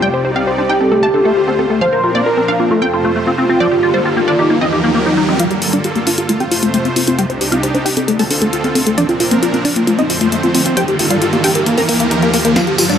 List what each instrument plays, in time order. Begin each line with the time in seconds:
Already playing: supersaw synth C3, soft synth lead G4
0.02 supersaw synth C2 G3 D#4 D5, acid bass G3, synth pluck G5
0.14 synth pluck C5
0.25 acid bass G4, synth pluck C5
0.36 acid bass C4, synth pluck F5
0.47 acid bass G4, synth pluck C5
0.58 acid bass D4, synth pluck C5
0.69 acid bass D#4, synth pluck G5
0.81 acid bass C4, synth pluck A4
0.92 supersaw synth D2 D3 A3 F4 C5, acid bass A3, synth pluck A4
1.03 acid bass A3, synth pluck A5
1.14 acid bass D4, synth pluck A4
1.25 acid bass A3, synth pluck A4
1.37 acid bass F4
1.48 acid bass C4, synth pluck A4
1.59 acid bass C4, synth pluck A4
1.70 acid bass A3, synth pluck A4
1.81 supersaw synth A#2 F3 C4 D4 A#4, acid bass F3, soft synth lead C5, synth pluck F5, riser
1.93 synth pluck A#4
2.04 acid bass F4, synth pluck A#4
2.15 acid bass A#3, synth pluck D5
2.26 acid bass F4, soft synth lead A#4, synth pluck A#4
2.37 acid bass C4, synth pluck A#4
2.48 acid bass D4, synth pluck F5
2.60 acid bass A#3, synth pluck F4
2.71 supersaw synth F2 C3 A3 F4 C5, acid bass A3, synth pluck F4, soft synth lead A4
2.82 acid bass C4, synth pluck G5
2.93 acid bass F4, synth pluck F4
3.05 acid bass A3, synth pluck F4
3.16 acid bass A3
3.27 acid bass C4, synth pluck F4
3.38 acid bass C4, soft synth lead F4, synth pluck F4
3.49 acid bass C4, synth pluck F4
3.60 supersaw synth G2 D3 A#3 A4, acid bass F3, synth pluck D5
3.71 synth pluck G4
3.83 acid bass F4, synth pluck G4
3.94 acid bass G3, synth pluck C5
4.05 acid bass F4, synth pluck G4
4.16 acid bass A#3, synth pluck G4
4.28 acid bass D4, synth pluck D5
4.39 synth pluck D#4, acid bass G4
4.50 supersaw synth D#2 D#3 G4 A#4, acid bass A#3, synth pluck D#4
4.61 acid bass C4, synth pluck D#5
4.72 synth pluck D#4, acid bass G4
4.84 acid bass A#3, synth pluck D#4
4.95 acid bass A#3
5.06 acid bass D#4, synth pluck D#4
5.17 acid bass D#4, synth pluck D#4
5.28 acid bass C4, synth pluck D#4
5.39 supersaw synth G2 D3 A#3 F4 A4, acid bass F3, synth pluck F4 F5, closed hi-hat, riser
5.51 synth pluck G4, closed hi-hat
5.62 acid bass F4, synth pluck G4, open hi-hat
5.73 acid bass G3, synth pluck D4 D5, closed hi-hat
5.84 acid bass F4, synth pluck G4, closed hi-hat
5.96 acid bass A#3, synth pluck G4, closed hi-hat
6.07 acid bass D4, synth pluck F4 F5, open hi-hat
6.18 synth pluck F4, acid bass G4, closed hi-hat
6.29 supersaw synth F2 C3 A3 C5, acid bass A3, synth pluck F4, closed hi-hat
6.40 acid bass C4, synth pluck G4 G5, closed hi-hat
6.51 acid bass F4, synth pluck F4, open hi-hat
6.63 acid bass A3, synth pluck F4, closed hi-hat
6.74 acid bass A3, closed hi-hat
6.85 acid bass C4, synth pluck F4, closed hi-hat
6.96 acid bass C4, synth pluck F4, open hi-hat
7.07 acid bass C4, synth pluck F4, closed hi-hat
7.19 supersaw synth C2 D4 D#4 G4, acid bass G3, synth pluck G4 G5, closed hi-hat
7.30 synth pluck C5, closed hi-hat
7.41 acid bass G4, synth pluck C5, open hi-hat
7.52 acid bass C4, synth pluck F4 F5, closed hi-hat
7.63 acid bass G4, synth pluck C5, closed hi-hat
7.74 acid bass D4, synth pluck C5, closed hi-hat
7.85 acid bass D#4, synth pluck G4 G5, open hi-hat
7.97 acid bass C4, synth pluck A4, closed hi-hat
8.08 supersaw synth D2 D3 C4 F4 A4, acid bass A3, synth pluck A4, closed hi-hat
8.19 acid bass A3, synth pluck A4 A5, open hi-hat
8.31 acid bass D4, synth pluck A4, open hi-hat
8.42 acid bass A3, synth pluck A4, closed hi-hat
8.53 acid bass F4, closed hi-hat
8.64 acid bass C4, synth pluck A4, closed hi-hat
8.75 acid bass C4, synth pluck A4, open hi-hat
8.86 acid bass A3, synth pluck A4, closed hi-hat
8.98 supersaw synth A#2 F3 D4 A#4, acid bass F3, synth pluck D4 D5, closed hi-hat
9.09 synth pluck F4, closed hi-hat
9.20 acid bass F4, synth pluck F4, open hi-hat
9.31 acid bass A#3, synth pluck C4 C5, closed hi-hat
9.42 synth pluck F4, acid bass F4, closed hi-hat
9.54 acid bass C4, synth pluck F4, closed hi-hat
9.65 synth pluck D4 D5, acid bass D4, open hi-hat
9.76 acid bass A#3, synth pluck F4, closed hi-hat
9.87 supersaw synth F2 A3 C5, acid bass A3, synth pluck F4, closed hi-hat
9.99 acid bass C4, synth pluck D#4 D#5, closed hi-hat
10.10 acid bass F4, synth pluck F4, open hi-hat
10.21 acid bass A3, synth pluck F4, closed hi-hat
10.32 acid bass A3, closed hi-hat
10.43 acid bass C4, synth pluck F4, closed hi-hat
10.54 acid bass C4, synth pluck F4, open hi-hat
10.66 acid bass C4, synth pluck F4, closed hi-hat
10.77 supersaw synth G2 D3 A#3 F4 A4, acid bass F3, synth pluck G4 G5, closed hi-hat
10.88 synth pluck G4, closed hi-hat
10.99 acid bass F4, synth pluck G4, open hi-hat
11.10 acid bass G3, synth pluck F4 F5, closed hi-hat
11.22 acid bass F4, synth pluck G4, closed hi-hat
11.33 acid bass A#3, synth pluck G4, closed hi-hat
11.44 acid bass D4, synth pluck G4 G5, open hi-hat
11.55 acid bass G4, synth pluck A#4, closed hi-hat
11.66 supersaw synth D#2 D#3 G4 A#4, acid bass A#3, synth pluck A#4, closed hi-hat
11.78 acid bass C4, synth pluck A#4 A#5, open hi-hat
11.89 acid bass A#3, synth pluck A#4, open hi-hat
12.00 acid bass A#3, synth pluck A#4, closed hi-hat
12.11 acid bass D#4, closed hi-hat
12.22 acid bass A#3, synth pluck A#4, closed hi-hat
12.34 acid bass A#3, synth pluck A#4, open hi-hat
12.45 acid bass A#3, synth pluck A#4, closed hi-hat
12.56 supersaw synth G2 D3 F4 A4, acid bass F3, synth pluck F4 F5, snare, closed hi-hat, tambourine
12.67 synth pluck G4, closed hi-hat
12.78 acid bass F4, synth pluck G4, open hi-hat, tambourine
12.89 acid bass G3, synth pluck D4 D5, closed hi-hat, tambourine, high conga